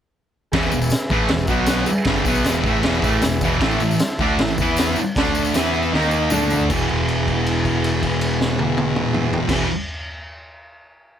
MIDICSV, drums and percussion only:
0, 0, Header, 1, 2, 480
1, 0, Start_track
1, 0, Tempo, 384369
1, 674, Time_signature, 4, 2, 24, 8
1, 8842, Tempo, 376648
1, 14089, End_track
2, 0, Start_track
2, 0, Title_t, "Drums"
2, 663, Note_on_c, 9, 49, 61
2, 665, Note_on_c, 9, 36, 112
2, 673, Note_on_c, 9, 38, 104
2, 783, Note_on_c, 9, 54, 31
2, 788, Note_off_c, 9, 49, 0
2, 790, Note_off_c, 9, 36, 0
2, 798, Note_off_c, 9, 38, 0
2, 894, Note_off_c, 9, 54, 0
2, 894, Note_on_c, 9, 54, 82
2, 1019, Note_off_c, 9, 54, 0
2, 1019, Note_on_c, 9, 54, 77
2, 1123, Note_off_c, 9, 54, 0
2, 1123, Note_on_c, 9, 54, 95
2, 1142, Note_on_c, 9, 49, 64
2, 1152, Note_on_c, 9, 38, 115
2, 1245, Note_off_c, 9, 54, 0
2, 1245, Note_on_c, 9, 54, 29
2, 1267, Note_off_c, 9, 49, 0
2, 1277, Note_off_c, 9, 38, 0
2, 1369, Note_off_c, 9, 54, 0
2, 1369, Note_on_c, 9, 54, 30
2, 1376, Note_on_c, 9, 36, 112
2, 1494, Note_off_c, 9, 54, 0
2, 1501, Note_off_c, 9, 36, 0
2, 1604, Note_on_c, 9, 49, 62
2, 1614, Note_on_c, 9, 38, 114
2, 1729, Note_off_c, 9, 49, 0
2, 1734, Note_on_c, 9, 54, 30
2, 1739, Note_off_c, 9, 38, 0
2, 1840, Note_off_c, 9, 54, 0
2, 1840, Note_on_c, 9, 54, 77
2, 1850, Note_on_c, 9, 36, 98
2, 1965, Note_off_c, 9, 54, 0
2, 1975, Note_off_c, 9, 36, 0
2, 2077, Note_on_c, 9, 49, 61
2, 2079, Note_on_c, 9, 54, 98
2, 2087, Note_on_c, 9, 38, 109
2, 2202, Note_off_c, 9, 49, 0
2, 2204, Note_off_c, 9, 54, 0
2, 2211, Note_off_c, 9, 38, 0
2, 2325, Note_on_c, 9, 54, 78
2, 2450, Note_off_c, 9, 54, 0
2, 2555, Note_on_c, 9, 49, 65
2, 2565, Note_on_c, 9, 38, 107
2, 2567, Note_on_c, 9, 36, 105
2, 2680, Note_off_c, 9, 49, 0
2, 2690, Note_off_c, 9, 38, 0
2, 2692, Note_off_c, 9, 36, 0
2, 2693, Note_on_c, 9, 54, 29
2, 2809, Note_on_c, 9, 36, 105
2, 2818, Note_off_c, 9, 54, 0
2, 2818, Note_on_c, 9, 54, 81
2, 2934, Note_off_c, 9, 36, 0
2, 2938, Note_off_c, 9, 54, 0
2, 2938, Note_on_c, 9, 54, 69
2, 3052, Note_on_c, 9, 49, 55
2, 3062, Note_on_c, 9, 38, 115
2, 3063, Note_off_c, 9, 54, 0
2, 3070, Note_on_c, 9, 54, 94
2, 3177, Note_off_c, 9, 49, 0
2, 3187, Note_off_c, 9, 38, 0
2, 3189, Note_off_c, 9, 54, 0
2, 3189, Note_on_c, 9, 54, 31
2, 3293, Note_on_c, 9, 36, 104
2, 3314, Note_off_c, 9, 54, 0
2, 3324, Note_on_c, 9, 54, 27
2, 3418, Note_off_c, 9, 36, 0
2, 3449, Note_off_c, 9, 54, 0
2, 3534, Note_on_c, 9, 49, 58
2, 3544, Note_on_c, 9, 38, 107
2, 3659, Note_off_c, 9, 49, 0
2, 3669, Note_off_c, 9, 38, 0
2, 3677, Note_on_c, 9, 54, 26
2, 3776, Note_on_c, 9, 36, 102
2, 3793, Note_off_c, 9, 54, 0
2, 3793, Note_on_c, 9, 54, 72
2, 3901, Note_off_c, 9, 36, 0
2, 3918, Note_off_c, 9, 54, 0
2, 4016, Note_on_c, 9, 49, 56
2, 4024, Note_on_c, 9, 54, 89
2, 4026, Note_on_c, 9, 38, 113
2, 4141, Note_off_c, 9, 49, 0
2, 4149, Note_off_c, 9, 54, 0
2, 4151, Note_off_c, 9, 38, 0
2, 4257, Note_on_c, 9, 54, 70
2, 4263, Note_on_c, 9, 36, 108
2, 4382, Note_off_c, 9, 54, 0
2, 4388, Note_off_c, 9, 36, 0
2, 4505, Note_on_c, 9, 36, 109
2, 4509, Note_on_c, 9, 49, 60
2, 4519, Note_on_c, 9, 38, 107
2, 4630, Note_off_c, 9, 36, 0
2, 4634, Note_off_c, 9, 49, 0
2, 4635, Note_on_c, 9, 54, 26
2, 4644, Note_off_c, 9, 38, 0
2, 4747, Note_off_c, 9, 54, 0
2, 4747, Note_on_c, 9, 54, 66
2, 4872, Note_off_c, 9, 54, 0
2, 4881, Note_on_c, 9, 54, 64
2, 4986, Note_on_c, 9, 49, 58
2, 4991, Note_off_c, 9, 54, 0
2, 4991, Note_on_c, 9, 54, 91
2, 4996, Note_on_c, 9, 38, 118
2, 5111, Note_off_c, 9, 49, 0
2, 5116, Note_off_c, 9, 54, 0
2, 5121, Note_off_c, 9, 38, 0
2, 5225, Note_on_c, 9, 54, 25
2, 5234, Note_on_c, 9, 36, 107
2, 5350, Note_off_c, 9, 54, 0
2, 5359, Note_off_c, 9, 36, 0
2, 5477, Note_on_c, 9, 49, 65
2, 5487, Note_on_c, 9, 38, 115
2, 5601, Note_on_c, 9, 54, 27
2, 5602, Note_off_c, 9, 49, 0
2, 5612, Note_off_c, 9, 38, 0
2, 5716, Note_off_c, 9, 54, 0
2, 5716, Note_on_c, 9, 54, 72
2, 5721, Note_on_c, 9, 36, 99
2, 5841, Note_off_c, 9, 54, 0
2, 5846, Note_off_c, 9, 36, 0
2, 5950, Note_on_c, 9, 54, 95
2, 5968, Note_on_c, 9, 49, 68
2, 5978, Note_on_c, 9, 38, 109
2, 6075, Note_off_c, 9, 54, 0
2, 6093, Note_off_c, 9, 49, 0
2, 6103, Note_off_c, 9, 38, 0
2, 6191, Note_on_c, 9, 54, 77
2, 6316, Note_off_c, 9, 54, 0
2, 6430, Note_on_c, 9, 54, 29
2, 6446, Note_on_c, 9, 36, 107
2, 6451, Note_on_c, 9, 49, 63
2, 6461, Note_on_c, 9, 38, 111
2, 6553, Note_off_c, 9, 54, 0
2, 6553, Note_on_c, 9, 54, 28
2, 6571, Note_off_c, 9, 36, 0
2, 6576, Note_off_c, 9, 49, 0
2, 6586, Note_off_c, 9, 38, 0
2, 6678, Note_off_c, 9, 54, 0
2, 6678, Note_on_c, 9, 54, 88
2, 6801, Note_off_c, 9, 54, 0
2, 6801, Note_on_c, 9, 54, 74
2, 6921, Note_off_c, 9, 54, 0
2, 6921, Note_on_c, 9, 54, 99
2, 6930, Note_on_c, 9, 49, 63
2, 6940, Note_on_c, 9, 38, 114
2, 7046, Note_off_c, 9, 54, 0
2, 7055, Note_off_c, 9, 49, 0
2, 7065, Note_off_c, 9, 38, 0
2, 7163, Note_on_c, 9, 54, 30
2, 7274, Note_off_c, 9, 54, 0
2, 7274, Note_on_c, 9, 54, 34
2, 7399, Note_off_c, 9, 54, 0
2, 7419, Note_on_c, 9, 38, 63
2, 7517, Note_on_c, 9, 54, 33
2, 7544, Note_off_c, 9, 38, 0
2, 7632, Note_off_c, 9, 54, 0
2, 7632, Note_on_c, 9, 54, 76
2, 7756, Note_off_c, 9, 54, 0
2, 7868, Note_on_c, 9, 54, 105
2, 7889, Note_on_c, 9, 45, 92
2, 7992, Note_off_c, 9, 54, 0
2, 8014, Note_off_c, 9, 45, 0
2, 8120, Note_on_c, 9, 54, 93
2, 8129, Note_on_c, 9, 43, 92
2, 8245, Note_off_c, 9, 54, 0
2, 8246, Note_on_c, 9, 54, 34
2, 8254, Note_off_c, 9, 43, 0
2, 8366, Note_off_c, 9, 54, 0
2, 8366, Note_on_c, 9, 54, 79
2, 8367, Note_on_c, 9, 36, 105
2, 8367, Note_on_c, 9, 57, 89
2, 8491, Note_off_c, 9, 54, 0
2, 8492, Note_off_c, 9, 36, 0
2, 8492, Note_off_c, 9, 57, 0
2, 8605, Note_on_c, 9, 36, 61
2, 8606, Note_on_c, 9, 57, 46
2, 8730, Note_off_c, 9, 36, 0
2, 8731, Note_off_c, 9, 57, 0
2, 8847, Note_on_c, 9, 49, 48
2, 8975, Note_off_c, 9, 49, 0
2, 9088, Note_on_c, 9, 36, 70
2, 9093, Note_on_c, 9, 57, 46
2, 9215, Note_off_c, 9, 36, 0
2, 9221, Note_off_c, 9, 57, 0
2, 9331, Note_on_c, 9, 49, 48
2, 9459, Note_off_c, 9, 49, 0
2, 9569, Note_on_c, 9, 36, 60
2, 9569, Note_on_c, 9, 57, 49
2, 9696, Note_off_c, 9, 57, 0
2, 9697, Note_off_c, 9, 36, 0
2, 9812, Note_on_c, 9, 49, 52
2, 9939, Note_off_c, 9, 49, 0
2, 10049, Note_on_c, 9, 36, 67
2, 10051, Note_on_c, 9, 57, 53
2, 10176, Note_off_c, 9, 36, 0
2, 10178, Note_off_c, 9, 57, 0
2, 10284, Note_on_c, 9, 49, 59
2, 10411, Note_off_c, 9, 49, 0
2, 10533, Note_on_c, 9, 38, 86
2, 10661, Note_off_c, 9, 38, 0
2, 10766, Note_on_c, 9, 48, 89
2, 10893, Note_off_c, 9, 48, 0
2, 11002, Note_on_c, 9, 48, 96
2, 11130, Note_off_c, 9, 48, 0
2, 11240, Note_on_c, 9, 47, 94
2, 11367, Note_off_c, 9, 47, 0
2, 11472, Note_on_c, 9, 45, 97
2, 11599, Note_off_c, 9, 45, 0
2, 11712, Note_on_c, 9, 43, 110
2, 11840, Note_off_c, 9, 43, 0
2, 11911, Note_on_c, 9, 36, 107
2, 11912, Note_on_c, 9, 57, 101
2, 11923, Note_on_c, 9, 38, 102
2, 12039, Note_off_c, 9, 36, 0
2, 12040, Note_off_c, 9, 57, 0
2, 12050, Note_off_c, 9, 38, 0
2, 14089, End_track
0, 0, End_of_file